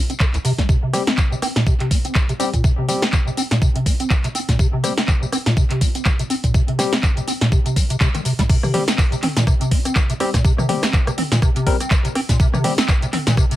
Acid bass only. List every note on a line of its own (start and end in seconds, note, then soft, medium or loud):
0.10 0.13 C4 medium
0.20 0.25 D#3 medium
0.34 0.38 C2 loud
0.45 0.52 C3 loud
0.58 0.67 G3 medium
0.69 0.77 C3 medium
0.83 0.95 C3 medium
0.93 1.01 C4 medium
1.07 1.19 C4 medium
1.18 1.22 C3 loud
1.32 1.35 C3 medium
1.42 1.47 C4 loud
1.56 1.65 A#2 medium
1.67 1.74 C3 medium
1.80 1.92 C3 medium
1.91 1.99 C4 medium
2.05 2.17 C4 medium
2.15 2.20 C3 loud
2.29 2.33 C3 medium
2.40 2.44 C4 loud
2.54 2.62 A#2 medium
2.64 2.72 C3 medium
2.78 2.90 C3 medium
2.88 2.96 C4 medium
3.02 3.14 C4 medium
3.13 3.17 C3 loud
3.27 3.30 C3 medium
3.37 3.42 C4 loud
3.51 3.60 A#2 medium
3.62 3.69 C3 medium
3.76 3.88 C3 medium
3.86 3.94 C4 medium
4.00 4.12 C4 medium
4.11 4.15 C3 loud
4.24 4.28 C3 medium
4.35 4.39 C4 loud
4.49 4.57 A#2 medium
4.59 4.67 C3 medium
4.73 4.85 C3 medium
4.84 4.91 C4 medium
4.97 5.10 C4 medium
5.08 5.13 C3 loud
5.22 5.25 C3 medium
5.32 5.37 C4 loud
5.46 5.55 A#2 medium
5.57 5.64 C3 medium
5.71 5.83 C3 medium
5.81 5.89 C4 medium
5.95 6.07 C4 medium
6.06 6.10 C3 loud
6.19 6.23 C3 medium
6.30 6.35 C4 loud
6.44 6.53 A#2 medium
6.54 6.62 C3 medium
6.68 6.80 C3 medium
6.79 6.86 C4 medium
6.93 7.05 C4 medium
7.03 7.08 C3 loud
7.17 7.20 C3 medium
7.28 7.32 C4 loud
7.41 7.50 A#2 medium
7.52 7.60 C3 medium
7.66 7.78 C3 medium
7.76 7.84 G3 medium
7.90 7.96 C3 medium
8.01 8.08 C3 medium
8.15 8.20 D#3 medium
8.25 8.33 C3 medium
8.39 8.42 G3 loud
8.49 8.57 C3 medium
8.63 8.75 C3 medium
8.74 8.81 C4 medium
8.88 9.00 C4 medium
8.98 9.03 C3 loud
9.12 9.16 C3 medium
9.23 9.27 C4 loud
9.36 9.45 A#2 medium
9.47 9.55 C3 medium
9.61 9.73 C3 medium
9.71 9.79 C4 medium
9.85 9.97 C4 medium
9.96 10.00 C3 loud
10.09 10.13 C3 medium
10.20 10.25 C4 loud
10.34 10.43 A#2 medium
10.45 10.52 C3 medium
10.58 10.70 C3 medium
10.69 10.77 C4 medium
10.83 10.95 C4 medium
10.93 10.98 C3 loud
11.07 11.11 C3 medium
11.18 11.22 C4 loud
11.32 11.40 A#2 medium
11.42 11.50 C3 medium
11.56 11.68 C3 medium
11.67 11.74 C4 medium
11.80 11.93 C4 medium
11.91 11.96 C3 loud
12.05 12.08 C3 medium
12.15 12.20 C4 loud
12.29 12.38 A#2 medium
12.40 12.47 C3 medium
12.54 12.66 C3 medium
12.64 12.72 C4 medium
12.78 12.90 C4 medium
12.89 12.93 C3 loud
13.02 13.06 C3 medium
13.13 13.17 C4 loud
13.27 13.36 A#2 medium
13.37 13.45 C3 medium
13.51 13.56 C3 medium